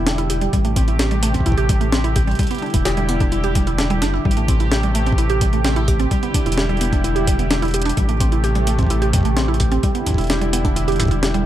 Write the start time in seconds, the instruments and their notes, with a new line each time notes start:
Already playing: analog synth bass E1, analog synth pad D3 G3 E4, synth texture G4
0.07 synth arpeggio sound D4, snare, closed hi-hat
0.18 synth arpeggio sound E4, closed hi-hat
0.30 synth arpeggio sound G4, closed hi-hat
0.41 synth arpeggio sound G3, closed hi-hat
0.53 analog synth bass A1, analog synth pad C3 A3 G4, synth arpeggio sound G3, kick, closed hi-hat
0.65 synth arpeggio sound A3, closed hi-hat
0.76 synth arpeggio sound C4, kick, closed hi-hat
0.88 synth arpeggio sound E4, closed hi-hat
0.99 synth arpeggio sound G4, snare, closed hi-hat
1.11 synth arpeggio sound G3, closed hi-hat
1.23 synth arpeggio sound A3, closed hi-hat
1.34 synth arpeggio sound C4, kick, closed hi-hat
1.40 kick
1.46 synth arpeggio sound E4, kick, closed hi-hat
1.52 kick
1.58 synth arpeggio sound G4, closed hi-hat
1.69 synth arpeggio sound G3, kick, closed hi-hat
1.81 synth arpeggio sound A3, closed hi-hat
1.92 synth arpeggio sound C4, snare, closed hi-hat
2.04 synth arpeggio sound E4, closed hi-hat
2.16 synth arpeggio sound G4, kick, closed hi-hat
2.27 synth arpeggio sound G3, closed hi-hat
2.31 closed hi-hat
2.35 synth arpeggio sound G3, closed hi-hat
2.39 analog synth pad D3 G3 E4, kick, closed hi-hat
2.43 closed hi-hat
2.47 closed hi-hat
2.51 synth arpeggio sound B3, closed hi-hat
2.55 closed hi-hat
2.58 synth arpeggio sound D4, closed hi-hat
2.62 closed hi-hat
2.66 closed hi-hat
2.70 closed hi-hat
2.74 analog synth bass E1, synth arpeggio sound E4, kick, closed hi-hat
2.85 synth arpeggio sound G4, snare, closed hi-hat
2.97 synth arpeggio sound G3, closed hi-hat
3.09 synth arpeggio sound B3, closed hi-hat
3.20 synth arpeggio sound D4, kick, closed hi-hat
3.32 synth arpeggio sound E4, closed hi-hat
3.44 synth arpeggio sound G4, closed hi-hat
3.55 synth arpeggio sound G3, kick, closed hi-hat
3.67 synth arpeggio sound E4, closed hi-hat
3.78 synth arpeggio sound D4, snare, closed hi-hat
3.90 synth arpeggio sound G3, closed hi-hat
4.02 analog synth bass F#1, synth arpeggio sound D4, snare, closed hi-hat
4.14 synth arpeggio sound E4
4.25 analog synth bass A1, analog synth pad C3 A3 G4, synth arpeggio sound G3, kick
4.31 closed hi-hat
4.37 synth arpeggio sound A3, closed hi-hat
4.48 synth arpeggio sound C4, kick, closed hi-hat
4.60 synth arpeggio sound E4, closed hi-hat
4.72 synth arpeggio sound G4, snare, closed hi-hat
4.83 synth arpeggio sound G3, closed hi-hat
4.95 synth arpeggio sound A3, closed hi-hat
5.06 synth arpeggio sound C4, closed hi-hat
5.12 kick
5.18 synth arpeggio sound E4, closed hi-hat
5.30 synth arpeggio sound G4, closed hi-hat
5.41 synth arpeggio sound G3, kick, closed hi-hat
5.53 synth arpeggio sound A3, closed hi-hat
5.65 synth arpeggio sound C4, snare, closed hi-hat
5.76 synth arpeggio sound E4, closed hi-hat
5.88 synth arpeggio sound G4, kick, closed hi-hat
6.00 synth arpeggio sound C4, closed hi-hat
6.11 analog synth pad D3 G3 E4, synth arpeggio sound G3, kick, closed hi-hat
6.23 synth arpeggio sound B3, closed hi-hat
6.34 synth arpeggio sound D4, kick, closed hi-hat
6.46 analog synth bass E1, synth arpeggio sound E4, closed hi-hat
6.52 closed hi-hat
6.58 synth arpeggio sound G4, snare
6.69 synth arpeggio sound G3, closed hi-hat
6.77 closed hi-hat
6.81 synth arpeggio sound B3, closed hi-hat
6.85 closed hi-hat
6.93 synth arpeggio sound D4, kick, closed hi-hat
7.04 synth arpeggio sound E4, closed hi-hat
7.16 synth arpeggio sound G4, closed hi-hat
7.27 synth arpeggio sound G3, kick, closed hi-hat
7.39 synth arpeggio sound B3, closed hi-hat
7.51 synth arpeggio sound D4, snare, closed hi-hat
7.62 synth arpeggio sound E4, closed hi-hat
7.65 closed hi-hat
7.68 closed hi-hat
7.71 closed hi-hat
7.74 synth arpeggio sound G4, closed hi-hat
7.77 closed hi-hat
7.80 closed hi-hat
7.82 closed hi-hat
7.85 synth arpeggio sound D4, closed hi-hat
7.89 closed hi-hat
7.97 analog synth bass A1, analog synth pad C3 A3 G4, synth arpeggio sound G3, kick, closed hi-hat
8.09 synth arpeggio sound A3, closed hi-hat
8.20 synth arpeggio sound C4, kick, closed hi-hat
8.32 synth arpeggio sound E4, closed hi-hat
8.44 synth arpeggio sound G4, closed hi-hat
8.55 synth arpeggio sound G3, closed hi-hat
8.67 synth arpeggio sound A3, closed hi-hat
8.79 synth arpeggio sound C4, kick, closed hi-hat
8.83 kick
8.87 synth arpeggio sound E4, kick, closed hi-hat
9.02 synth arpeggio sound G4, closed hi-hat
9.13 synth arpeggio sound G3, kick, closed hi-hat
9.16 kick
9.18 kick
9.21 kick
9.23 synth arpeggio sound A3, kick, closed hi-hat
9.37 synth arpeggio sound C4, snare, closed hi-hat
9.48 synth arpeggio sound E4
9.54 closed hi-hat
9.60 synth arpeggio sound G4, kick, closed hi-hat
9.72 synth arpeggio sound C4, closed hi-hat
9.83 analog synth pad D3 G3 E4, synth arpeggio sound G3, kick, closed hi-hat
9.95 synth arpeggio sound B3, closed hi-hat
10.06 synth arpeggio sound D4, kick, closed hi-hat
10.11 kick
10.14 analog synth bass E1, synth arpeggio sound E4, kick, closed hi-hat
10.21 closed hi-hat
10.24 closed hi-hat
10.27 synth arpeggio sound G4, snare, closed hi-hat
10.30 closed hi-hat
10.33 closed hi-hat
10.36 closed hi-hat
10.39 synth arpeggio sound G3, closed hi-hat
10.41 closed hi-hat
10.53 synth arpeggio sound B3, closed hi-hat
10.65 synth arpeggio sound D4, kick, closed hi-hat
10.76 synth arpeggio sound E4, closed hi-hat
10.88 synth arpeggio sound G4, closed hi-hat
10.92 closed hi-hat
10.96 synth arpeggio sound E4, closed hi-hat
11.00 kick, closed hi-hat
11.03 kick, closed hi-hat
11.05 kick, closed hi-hat
11.08 synth arpeggio sound E4, kick, closed hi-hat
11.23 synth arpeggio sound G4, snare, closed hi-hat
11.34 synth arpeggio sound G3, closed hi-hat